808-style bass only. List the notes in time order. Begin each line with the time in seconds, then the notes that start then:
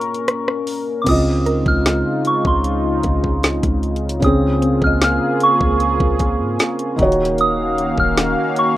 1.07 C#2
1.66 C#2
2.45 C#2
3.04 C#2
3.63 C#2
4.23 C#2
4.82 C#2
5.61 C#2
6.00 C#2
6.40 G#2
6.99 D#1
7.98 D#1